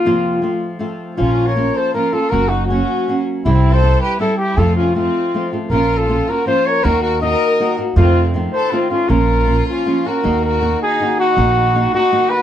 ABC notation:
X:1
M:3/4
L:1/16
Q:1/4=160
K:Bbm
V:1 name="Trumpet"
F8 z4 | F3 d3 c2 B2 =A2 | B2 G2 G6 z2 | =E3 c3 _c2 =A2 =G2 |
=A2 F2 F6 z2 | B3 =A3 B2 c2 d2 | B2 B2 e6 z2 | F3 z3 c2 F2 F2 |
B6 F4 B2- | [K:Ebm] B2 B4 A4 G2- | G6 G4 c2 |]
V:2 name="Violin section"
z12 | D3 B3 =A2 F2 F2 | G2 E2 D6 z2 | C3 =A3 =G2 =E2 E2 |
F2 D2 C6 z2 | F3 F3 G2 F2 B2 | G2 G2 B6 z2 | C3 z3 =A2 C2 D2 |
F6 D4 G2- | [K:Ebm] G2 G4 E4 E2- | E6 E4 G2 |]
V:3 name="Nylon-string guitar"
[F,,C,F,B,CF]4 [F,=A,CF]4 [F,A,CF]4 | [B,,F,B,DF]4 [F,B,DF]4 [F,B,DF]2 [B,DF]2 | [G,B,DG]4 [G,B,DG]4 [G,B,DG]4 | [C,=G,C=E=G]4 [G,CEG]4 [G,CEG]4 |
[F,,C,F,=A,CF]4 [F,A,CF]4 [F,A,CF]2 [F,A,CF]2 | [B,,F,B,DF]4 [F,B,DF]2 [B,DF]2 [F,B,DF]4 | [E,B,EG]4 [E,B,EG]4 [E,B,EG]2 [B,EG]2 | [F,,C,E,=A,CF]4 [E,A,CF]4 [E,A,CF]2 [E,A,CF]2 |
[B,,F,B,DF]4 [F,B,DF]4 [F,B,DF]2 [B,DF]2 | [K:Ebm] [E,B,EG]4 [E,B,EG]4 [E,B,EG]4 | [E,B,EG]4 [E,B,EG]2 [B,EG]2 [E,B,EG]4 |]
V:4 name="Upright bass" clef=bass
z12 | B,,,8 z4 | G,,,8 z4 | C,,8 z4 |
F,,8 z4 | B,,,8 z4 | E,,8 z4 | F,,8 z4 |
B,,,8 z4 | [K:Ebm] E,,8 z4 | B,,,8 z4 |]